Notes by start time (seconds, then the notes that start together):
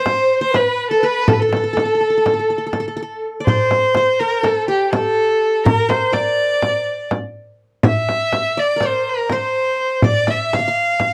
Already playing: C5
0.06 frame drum
0.41 C5
0.53 B4, frame drum
0.89 A4
1.00 B4
1.04 B4
1.25 A4, frame drum
1.33 B4
1.40 A4
1.49 A4, frame drum
1.57 A4
1.64 A4
1.73 A4, frame drum
1.79 A4
1.85 A4
1.95 A4
2.01 A4
2.10 A4
2.18 A4
2.25 A4, frame drum
2.34 A4
2.39 A4
2.50 A4
2.58 A4
2.67 A4
2.73 A4, frame drum
2.80 A4
2.88 A4
2.97 A4
3.03 A4
3.40 D5
3.45 C5, frame drum
3.71 frame drum
3.95 C5, frame drum
4.20 A#4
4.43 A4, frame drum
4.68 G4
4.93 A4, frame drum
5.65 A#4, frame drum
5.89 C5, frame drum
6.13 D5, frame drum
6.62 frame drum
7.11 frame drum
7.83 E5, frame drum
7.87 E5
8.09 frame drum
8.32 frame drum
8.57 D5
8.76 A#4
8.81 C5, frame drum
8.86 C5
9.10 A#4
9.30 C5, frame drum
10.02 D5, frame drum
10.06 D5
10.27 E5, frame drum
10.53 F5, frame drum
10.59 E5
10.68 F5
11.00 frame drum